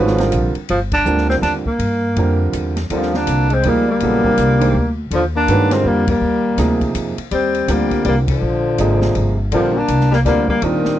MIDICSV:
0, 0, Header, 1, 7, 480
1, 0, Start_track
1, 0, Key_signature, -3, "major"
1, 0, Tempo, 367647
1, 902, Time_signature, 3, 2, 24, 8
1, 14351, End_track
2, 0, Start_track
2, 0, Title_t, "Grand piano"
2, 0, Program_c, 0, 0
2, 0, Note_on_c, 0, 51, 77
2, 0, Note_on_c, 0, 56, 65
2, 0, Note_on_c, 0, 61, 65
2, 0, Note_on_c, 0, 66, 67
2, 0, Note_on_c, 0, 71, 88
2, 215, Note_off_c, 0, 51, 0
2, 217, Note_off_c, 0, 56, 0
2, 220, Note_off_c, 0, 61, 0
2, 221, Note_off_c, 0, 66, 0
2, 225, Note_off_c, 0, 71, 0
2, 242, Note_on_c, 0, 55, 61
2, 246, Note_on_c, 0, 50, 64
2, 248, Note_on_c, 0, 60, 60
2, 256, Note_on_c, 0, 65, 65
2, 258, Note_on_c, 0, 70, 73
2, 664, Note_off_c, 0, 55, 0
2, 666, Note_off_c, 0, 50, 0
2, 667, Note_off_c, 0, 60, 0
2, 671, Note_off_c, 0, 65, 0
2, 672, Note_off_c, 0, 70, 0
2, 1374, Note_on_c, 0, 55, 61
2, 1375, Note_on_c, 0, 50, 63
2, 1380, Note_on_c, 0, 60, 53
2, 1386, Note_on_c, 0, 65, 57
2, 1393, Note_on_c, 0, 70, 71
2, 2107, Note_off_c, 0, 50, 0
2, 2107, Note_off_c, 0, 55, 0
2, 2109, Note_off_c, 0, 60, 0
2, 2113, Note_off_c, 0, 65, 0
2, 2116, Note_off_c, 0, 70, 0
2, 2829, Note_on_c, 0, 50, 63
2, 2841, Note_on_c, 0, 55, 60
2, 2842, Note_on_c, 0, 65, 54
2, 2847, Note_on_c, 0, 60, 58
2, 2854, Note_on_c, 0, 70, 74
2, 3557, Note_off_c, 0, 50, 0
2, 3563, Note_off_c, 0, 55, 0
2, 3563, Note_off_c, 0, 65, 0
2, 3566, Note_off_c, 0, 60, 0
2, 3569, Note_off_c, 0, 70, 0
2, 3794, Note_on_c, 0, 50, 62
2, 3804, Note_on_c, 0, 65, 54
2, 3805, Note_on_c, 0, 55, 55
2, 3808, Note_on_c, 0, 60, 54
2, 3816, Note_on_c, 0, 70, 63
2, 4521, Note_off_c, 0, 50, 0
2, 4526, Note_off_c, 0, 65, 0
2, 4527, Note_off_c, 0, 55, 0
2, 4528, Note_off_c, 0, 60, 0
2, 4532, Note_off_c, 0, 70, 0
2, 4763, Note_on_c, 0, 53, 64
2, 4769, Note_on_c, 0, 58, 57
2, 4769, Note_on_c, 0, 63, 54
2, 4779, Note_on_c, 0, 74, 65
2, 4784, Note_on_c, 0, 68, 58
2, 5036, Note_off_c, 0, 53, 0
2, 5038, Note_off_c, 0, 58, 0
2, 5038, Note_off_c, 0, 63, 0
2, 5044, Note_off_c, 0, 74, 0
2, 5046, Note_off_c, 0, 68, 0
2, 5251, Note_on_c, 0, 49, 56
2, 5256, Note_on_c, 0, 54, 55
2, 5261, Note_on_c, 0, 64, 52
2, 5263, Note_on_c, 0, 59, 49
2, 5265, Note_on_c, 0, 69, 64
2, 5520, Note_off_c, 0, 49, 0
2, 5522, Note_off_c, 0, 54, 0
2, 5525, Note_off_c, 0, 64, 0
2, 5526, Note_off_c, 0, 59, 0
2, 5527, Note_off_c, 0, 69, 0
2, 5539, Note_on_c, 0, 50, 58
2, 5546, Note_on_c, 0, 55, 49
2, 5547, Note_on_c, 0, 60, 55
2, 5551, Note_on_c, 0, 65, 48
2, 5559, Note_on_c, 0, 70, 61
2, 5962, Note_off_c, 0, 50, 0
2, 5965, Note_off_c, 0, 55, 0
2, 5966, Note_off_c, 0, 60, 0
2, 5968, Note_off_c, 0, 65, 0
2, 5972, Note_off_c, 0, 70, 0
2, 6009, Note_on_c, 0, 51, 67
2, 6011, Note_on_c, 0, 62, 59
2, 6012, Note_on_c, 0, 56, 57
2, 6021, Note_on_c, 0, 67, 61
2, 6027, Note_on_c, 0, 72, 68
2, 6175, Note_off_c, 0, 51, 0
2, 6177, Note_off_c, 0, 56, 0
2, 6177, Note_off_c, 0, 62, 0
2, 6181, Note_off_c, 0, 67, 0
2, 6184, Note_off_c, 0, 72, 0
2, 7165, Note_on_c, 0, 51, 75
2, 7166, Note_on_c, 0, 56, 61
2, 7178, Note_on_c, 0, 61, 61
2, 7182, Note_on_c, 0, 66, 61
2, 7186, Note_on_c, 0, 71, 88
2, 7437, Note_off_c, 0, 51, 0
2, 7438, Note_off_c, 0, 56, 0
2, 7444, Note_off_c, 0, 61, 0
2, 7446, Note_off_c, 0, 66, 0
2, 7448, Note_off_c, 0, 71, 0
2, 7472, Note_on_c, 0, 50, 74
2, 7483, Note_on_c, 0, 55, 65
2, 7487, Note_on_c, 0, 60, 66
2, 7488, Note_on_c, 0, 65, 59
2, 7493, Note_on_c, 0, 70, 74
2, 7888, Note_off_c, 0, 50, 0
2, 7893, Note_off_c, 0, 55, 0
2, 7895, Note_off_c, 0, 60, 0
2, 7896, Note_off_c, 0, 65, 0
2, 7898, Note_off_c, 0, 70, 0
2, 8592, Note_on_c, 0, 48, 65
2, 8596, Note_on_c, 0, 53, 57
2, 8601, Note_on_c, 0, 58, 62
2, 8601, Note_on_c, 0, 63, 55
2, 8607, Note_on_c, 0, 68, 74
2, 9318, Note_off_c, 0, 48, 0
2, 9320, Note_off_c, 0, 53, 0
2, 9323, Note_off_c, 0, 58, 0
2, 9323, Note_off_c, 0, 63, 0
2, 9325, Note_off_c, 0, 68, 0
2, 10028, Note_on_c, 0, 50, 65
2, 10030, Note_on_c, 0, 60, 55
2, 10031, Note_on_c, 0, 55, 61
2, 10038, Note_on_c, 0, 65, 55
2, 10048, Note_on_c, 0, 70, 69
2, 10753, Note_off_c, 0, 50, 0
2, 10754, Note_off_c, 0, 55, 0
2, 10754, Note_off_c, 0, 60, 0
2, 10758, Note_off_c, 0, 65, 0
2, 10763, Note_off_c, 0, 70, 0
2, 11481, Note_on_c, 0, 48, 65
2, 11486, Note_on_c, 0, 75, 64
2, 11489, Note_on_c, 0, 53, 66
2, 11492, Note_on_c, 0, 58, 60
2, 11496, Note_on_c, 0, 68, 73
2, 12196, Note_off_c, 0, 48, 0
2, 12199, Note_off_c, 0, 75, 0
2, 12200, Note_off_c, 0, 53, 0
2, 12202, Note_off_c, 0, 58, 0
2, 12204, Note_off_c, 0, 68, 0
2, 12438, Note_on_c, 0, 50, 65
2, 12446, Note_on_c, 0, 55, 57
2, 12450, Note_on_c, 0, 60, 65
2, 12454, Note_on_c, 0, 65, 59
2, 12458, Note_on_c, 0, 70, 75
2, 12705, Note_off_c, 0, 50, 0
2, 12709, Note_off_c, 0, 55, 0
2, 12711, Note_off_c, 0, 60, 0
2, 12713, Note_off_c, 0, 65, 0
2, 12715, Note_off_c, 0, 70, 0
2, 13389, Note_on_c, 0, 50, 65
2, 13394, Note_on_c, 0, 55, 60
2, 13398, Note_on_c, 0, 60, 60
2, 13400, Note_on_c, 0, 65, 55
2, 13409, Note_on_c, 0, 70, 78
2, 13658, Note_off_c, 0, 50, 0
2, 13661, Note_off_c, 0, 55, 0
2, 13663, Note_off_c, 0, 60, 0
2, 13664, Note_off_c, 0, 65, 0
2, 13668, Note_off_c, 0, 70, 0
2, 13879, Note_on_c, 0, 55, 56
2, 13880, Note_on_c, 0, 62, 63
2, 13889, Note_on_c, 0, 60, 54
2, 13892, Note_on_c, 0, 70, 73
2, 13893, Note_on_c, 0, 65, 56
2, 14351, Note_off_c, 0, 55, 0
2, 14351, Note_off_c, 0, 60, 0
2, 14351, Note_off_c, 0, 62, 0
2, 14351, Note_off_c, 0, 65, 0
2, 14351, Note_off_c, 0, 70, 0
2, 14351, End_track
3, 0, Start_track
3, 0, Title_t, "Tenor saxophone"
3, 0, Program_c, 1, 66
3, 0, Note_on_c, 1, 53, 91
3, 726, Note_off_c, 1, 53, 0
3, 910, Note_on_c, 1, 53, 88
3, 1046, Note_off_c, 1, 53, 0
3, 1219, Note_on_c, 1, 62, 100
3, 1663, Note_off_c, 1, 62, 0
3, 1692, Note_on_c, 1, 60, 91
3, 1771, Note_off_c, 1, 60, 0
3, 1860, Note_on_c, 1, 62, 93
3, 2000, Note_off_c, 1, 62, 0
3, 2178, Note_on_c, 1, 58, 83
3, 3182, Note_off_c, 1, 58, 0
3, 3851, Note_on_c, 1, 53, 88
3, 4134, Note_on_c, 1, 62, 103
3, 4154, Note_off_c, 1, 53, 0
3, 4615, Note_on_c, 1, 60, 97
3, 4634, Note_off_c, 1, 62, 0
3, 4810, Note_on_c, 1, 58, 86
3, 4829, Note_off_c, 1, 60, 0
3, 5089, Note_off_c, 1, 58, 0
3, 5110, Note_on_c, 1, 58, 94
3, 6477, Note_off_c, 1, 58, 0
3, 6717, Note_on_c, 1, 53, 91
3, 6846, Note_off_c, 1, 53, 0
3, 7007, Note_on_c, 1, 62, 102
3, 7478, Note_on_c, 1, 60, 95
3, 7498, Note_off_c, 1, 62, 0
3, 7668, Note_on_c, 1, 58, 85
3, 7687, Note_off_c, 1, 60, 0
3, 7959, Note_off_c, 1, 58, 0
3, 7967, Note_on_c, 1, 58, 81
3, 8956, Note_off_c, 1, 58, 0
3, 9583, Note_on_c, 1, 60, 78
3, 10071, Note_on_c, 1, 58, 81
3, 10090, Note_off_c, 1, 60, 0
3, 10532, Note_off_c, 1, 58, 0
3, 10554, Note_on_c, 1, 58, 76
3, 10681, Note_off_c, 1, 58, 0
3, 10846, Note_on_c, 1, 53, 87
3, 12213, Note_off_c, 1, 53, 0
3, 12465, Note_on_c, 1, 53, 92
3, 12771, Note_on_c, 1, 62, 100
3, 12791, Note_off_c, 1, 53, 0
3, 13228, Note_off_c, 1, 62, 0
3, 13240, Note_on_c, 1, 58, 87
3, 13311, Note_off_c, 1, 58, 0
3, 13409, Note_on_c, 1, 58, 88
3, 13679, Note_off_c, 1, 58, 0
3, 13703, Note_on_c, 1, 58, 96
3, 13884, Note_on_c, 1, 51, 81
3, 13904, Note_off_c, 1, 58, 0
3, 14351, Note_off_c, 1, 51, 0
3, 14351, End_track
4, 0, Start_track
4, 0, Title_t, "Tenor saxophone"
4, 0, Program_c, 2, 66
4, 3796, Note_on_c, 2, 50, 73
4, 4105, Note_on_c, 2, 58, 72
4, 4124, Note_off_c, 2, 50, 0
4, 4562, Note_on_c, 2, 56, 78
4, 4581, Note_off_c, 2, 58, 0
4, 4754, Note_on_c, 2, 55, 82
4, 4773, Note_off_c, 2, 56, 0
4, 5052, Note_off_c, 2, 55, 0
4, 5060, Note_on_c, 2, 55, 78
4, 6452, Note_off_c, 2, 55, 0
4, 6689, Note_on_c, 2, 50, 75
4, 6825, Note_off_c, 2, 50, 0
4, 6994, Note_on_c, 2, 58, 77
4, 7480, Note_on_c, 2, 56, 76
4, 7499, Note_off_c, 2, 58, 0
4, 7633, Note_on_c, 2, 55, 79
4, 7653, Note_off_c, 2, 56, 0
4, 7924, Note_off_c, 2, 55, 0
4, 7932, Note_on_c, 2, 55, 71
4, 8938, Note_off_c, 2, 55, 0
4, 9555, Note_on_c, 2, 55, 75
4, 10026, Note_off_c, 2, 55, 0
4, 10026, Note_on_c, 2, 55, 66
4, 10497, Note_off_c, 2, 55, 0
4, 10504, Note_on_c, 2, 55, 73
4, 10643, Note_off_c, 2, 55, 0
4, 10835, Note_on_c, 2, 50, 71
4, 12208, Note_off_c, 2, 50, 0
4, 12433, Note_on_c, 2, 50, 80
4, 12714, Note_on_c, 2, 58, 80
4, 12733, Note_off_c, 2, 50, 0
4, 13199, Note_off_c, 2, 58, 0
4, 13205, Note_on_c, 2, 55, 75
4, 13284, Note_off_c, 2, 55, 0
4, 13388, Note_on_c, 2, 55, 89
4, 13667, Note_off_c, 2, 55, 0
4, 13697, Note_on_c, 2, 55, 67
4, 13869, Note_on_c, 2, 46, 69
4, 13889, Note_off_c, 2, 55, 0
4, 14351, Note_off_c, 2, 46, 0
4, 14351, End_track
5, 0, Start_track
5, 0, Title_t, "Upright bass"
5, 0, Program_c, 3, 32
5, 0, Note_on_c, 3, 32, 82
5, 405, Note_off_c, 3, 32, 0
5, 422, Note_on_c, 3, 34, 82
5, 705, Note_off_c, 3, 34, 0
5, 908, Note_on_c, 3, 31, 76
5, 1373, Note_off_c, 3, 31, 0
5, 1379, Note_on_c, 3, 38, 90
5, 1841, Note_off_c, 3, 38, 0
5, 1849, Note_on_c, 3, 39, 84
5, 2142, Note_off_c, 3, 39, 0
5, 2334, Note_on_c, 3, 43, 79
5, 2810, Note_off_c, 3, 43, 0
5, 2822, Note_on_c, 3, 41, 83
5, 3292, Note_off_c, 3, 41, 0
5, 3300, Note_on_c, 3, 40, 82
5, 3774, Note_off_c, 3, 40, 0
5, 3786, Note_on_c, 3, 39, 72
5, 4258, Note_off_c, 3, 39, 0
5, 4265, Note_on_c, 3, 36, 78
5, 4738, Note_off_c, 3, 36, 0
5, 4756, Note_on_c, 3, 38, 75
5, 5224, Note_off_c, 3, 38, 0
5, 5243, Note_on_c, 3, 34, 75
5, 5702, Note_off_c, 3, 34, 0
5, 5710, Note_on_c, 3, 36, 79
5, 6181, Note_off_c, 3, 36, 0
5, 6193, Note_on_c, 3, 38, 84
5, 6659, Note_off_c, 3, 38, 0
5, 6667, Note_on_c, 3, 39, 74
5, 7140, Note_off_c, 3, 39, 0
5, 7155, Note_on_c, 3, 43, 84
5, 7616, Note_off_c, 3, 43, 0
5, 7624, Note_on_c, 3, 41, 85
5, 8098, Note_off_c, 3, 41, 0
5, 8108, Note_on_c, 3, 39, 78
5, 8579, Note_off_c, 3, 39, 0
5, 8585, Note_on_c, 3, 38, 87
5, 9057, Note_off_c, 3, 38, 0
5, 9070, Note_on_c, 3, 41, 82
5, 9357, Note_off_c, 3, 41, 0
5, 9546, Note_on_c, 3, 39, 69
5, 10016, Note_off_c, 3, 39, 0
5, 10026, Note_on_c, 3, 38, 81
5, 10495, Note_off_c, 3, 38, 0
5, 10508, Note_on_c, 3, 36, 85
5, 10975, Note_off_c, 3, 36, 0
5, 10985, Note_on_c, 3, 34, 82
5, 11452, Note_off_c, 3, 34, 0
5, 11471, Note_on_c, 3, 32, 89
5, 11934, Note_off_c, 3, 32, 0
5, 11953, Note_on_c, 3, 31, 78
5, 12414, Note_off_c, 3, 31, 0
5, 12427, Note_on_c, 3, 34, 75
5, 12890, Note_off_c, 3, 34, 0
5, 12902, Note_on_c, 3, 36, 82
5, 13367, Note_off_c, 3, 36, 0
5, 13379, Note_on_c, 3, 38, 85
5, 13844, Note_off_c, 3, 38, 0
5, 13863, Note_on_c, 3, 39, 76
5, 14144, Note_off_c, 3, 39, 0
5, 14351, End_track
6, 0, Start_track
6, 0, Title_t, "Muted upright bass strokes"
6, 726, Note_on_c, 9, 29, 38
6, 857, Note_off_c, 9, 29, 0
6, 2162, Note_on_c, 9, 29, 37
6, 2292, Note_off_c, 9, 29, 0
6, 9366, Note_on_c, 9, 29, 33
6, 9497, Note_off_c, 9, 29, 0
6, 14179, Note_on_c, 9, 29, 37
6, 14310, Note_off_c, 9, 29, 0
6, 14351, End_track
7, 0, Start_track
7, 0, Title_t, "Drums"
7, 95, Note_on_c, 9, 38, 31
7, 225, Note_off_c, 9, 38, 0
7, 238, Note_on_c, 9, 51, 43
7, 253, Note_on_c, 9, 38, 40
7, 369, Note_off_c, 9, 51, 0
7, 383, Note_off_c, 9, 38, 0
7, 415, Note_on_c, 9, 44, 49
7, 415, Note_on_c, 9, 51, 61
7, 546, Note_off_c, 9, 44, 0
7, 546, Note_off_c, 9, 51, 0
7, 718, Note_on_c, 9, 51, 41
7, 848, Note_off_c, 9, 51, 0
7, 897, Note_on_c, 9, 51, 63
7, 1028, Note_off_c, 9, 51, 0
7, 1197, Note_on_c, 9, 51, 65
7, 1199, Note_on_c, 9, 36, 75
7, 1328, Note_off_c, 9, 51, 0
7, 1329, Note_off_c, 9, 36, 0
7, 1377, Note_on_c, 9, 44, 51
7, 1508, Note_off_c, 9, 44, 0
7, 1537, Note_on_c, 9, 38, 29
7, 1667, Note_off_c, 9, 38, 0
7, 1701, Note_on_c, 9, 38, 40
7, 1831, Note_off_c, 9, 38, 0
7, 1863, Note_on_c, 9, 38, 36
7, 1866, Note_on_c, 9, 51, 54
7, 1994, Note_off_c, 9, 38, 0
7, 1996, Note_off_c, 9, 51, 0
7, 2165, Note_on_c, 9, 36, 46
7, 2295, Note_off_c, 9, 36, 0
7, 2343, Note_on_c, 9, 51, 62
7, 2474, Note_off_c, 9, 51, 0
7, 2827, Note_on_c, 9, 51, 51
7, 2957, Note_off_c, 9, 51, 0
7, 3307, Note_on_c, 9, 44, 51
7, 3307, Note_on_c, 9, 51, 57
7, 3438, Note_off_c, 9, 44, 0
7, 3438, Note_off_c, 9, 51, 0
7, 3609, Note_on_c, 9, 38, 45
7, 3612, Note_on_c, 9, 51, 44
7, 3740, Note_off_c, 9, 38, 0
7, 3743, Note_off_c, 9, 51, 0
7, 3787, Note_on_c, 9, 51, 60
7, 3918, Note_off_c, 9, 51, 0
7, 3947, Note_on_c, 9, 38, 26
7, 4078, Note_off_c, 9, 38, 0
7, 4101, Note_on_c, 9, 38, 42
7, 4231, Note_off_c, 9, 38, 0
7, 4268, Note_on_c, 9, 44, 49
7, 4268, Note_on_c, 9, 51, 64
7, 4399, Note_off_c, 9, 44, 0
7, 4399, Note_off_c, 9, 51, 0
7, 4570, Note_on_c, 9, 51, 45
7, 4701, Note_off_c, 9, 51, 0
7, 4745, Note_on_c, 9, 51, 59
7, 4875, Note_off_c, 9, 51, 0
7, 5227, Note_on_c, 9, 51, 62
7, 5358, Note_off_c, 9, 51, 0
7, 5535, Note_on_c, 9, 36, 46
7, 5665, Note_off_c, 9, 36, 0
7, 5713, Note_on_c, 9, 44, 53
7, 5713, Note_on_c, 9, 51, 61
7, 5843, Note_off_c, 9, 44, 0
7, 5843, Note_off_c, 9, 51, 0
7, 6023, Note_on_c, 9, 51, 61
7, 6154, Note_off_c, 9, 51, 0
7, 6675, Note_on_c, 9, 51, 62
7, 6805, Note_off_c, 9, 51, 0
7, 7157, Note_on_c, 9, 44, 53
7, 7157, Note_on_c, 9, 51, 63
7, 7288, Note_off_c, 9, 44, 0
7, 7288, Note_off_c, 9, 51, 0
7, 7455, Note_on_c, 9, 38, 43
7, 7458, Note_on_c, 9, 51, 66
7, 7586, Note_off_c, 9, 38, 0
7, 7588, Note_off_c, 9, 51, 0
7, 7933, Note_on_c, 9, 36, 76
7, 7933, Note_on_c, 9, 51, 73
7, 8063, Note_off_c, 9, 36, 0
7, 8064, Note_off_c, 9, 51, 0
7, 8585, Note_on_c, 9, 38, 36
7, 8588, Note_on_c, 9, 44, 49
7, 8588, Note_on_c, 9, 51, 71
7, 8716, Note_off_c, 9, 38, 0
7, 8718, Note_off_c, 9, 44, 0
7, 8718, Note_off_c, 9, 51, 0
7, 8891, Note_on_c, 9, 36, 49
7, 8893, Note_on_c, 9, 51, 45
7, 9021, Note_off_c, 9, 36, 0
7, 9024, Note_off_c, 9, 51, 0
7, 9070, Note_on_c, 9, 44, 49
7, 9070, Note_on_c, 9, 51, 64
7, 9201, Note_off_c, 9, 44, 0
7, 9201, Note_off_c, 9, 51, 0
7, 9376, Note_on_c, 9, 51, 48
7, 9506, Note_off_c, 9, 51, 0
7, 9547, Note_on_c, 9, 51, 59
7, 9678, Note_off_c, 9, 51, 0
7, 9852, Note_on_c, 9, 51, 44
7, 9982, Note_off_c, 9, 51, 0
7, 10031, Note_on_c, 9, 44, 58
7, 10031, Note_on_c, 9, 51, 72
7, 10161, Note_off_c, 9, 44, 0
7, 10161, Note_off_c, 9, 51, 0
7, 10327, Note_on_c, 9, 36, 43
7, 10329, Note_on_c, 9, 51, 42
7, 10457, Note_off_c, 9, 36, 0
7, 10460, Note_off_c, 9, 51, 0
7, 10505, Note_on_c, 9, 51, 58
7, 10636, Note_off_c, 9, 51, 0
7, 10807, Note_on_c, 9, 36, 83
7, 10810, Note_on_c, 9, 51, 72
7, 10938, Note_off_c, 9, 36, 0
7, 10940, Note_off_c, 9, 51, 0
7, 11467, Note_on_c, 9, 44, 47
7, 11467, Note_on_c, 9, 51, 61
7, 11598, Note_off_c, 9, 44, 0
7, 11598, Note_off_c, 9, 51, 0
7, 11771, Note_on_c, 9, 38, 57
7, 11902, Note_off_c, 9, 38, 0
7, 11946, Note_on_c, 9, 51, 54
7, 12076, Note_off_c, 9, 51, 0
7, 12426, Note_on_c, 9, 51, 66
7, 12557, Note_off_c, 9, 51, 0
7, 12904, Note_on_c, 9, 44, 47
7, 12904, Note_on_c, 9, 51, 65
7, 13034, Note_off_c, 9, 44, 0
7, 13034, Note_off_c, 9, 51, 0
7, 13065, Note_on_c, 9, 38, 29
7, 13195, Note_off_c, 9, 38, 0
7, 13224, Note_on_c, 9, 38, 39
7, 13355, Note_off_c, 9, 38, 0
7, 13389, Note_on_c, 9, 38, 37
7, 13392, Note_on_c, 9, 51, 51
7, 13520, Note_off_c, 9, 38, 0
7, 13522, Note_off_c, 9, 51, 0
7, 13685, Note_on_c, 9, 36, 49
7, 13816, Note_off_c, 9, 36, 0
7, 13864, Note_on_c, 9, 51, 61
7, 13995, Note_off_c, 9, 51, 0
7, 14166, Note_on_c, 9, 38, 53
7, 14296, Note_off_c, 9, 38, 0
7, 14351, End_track
0, 0, End_of_file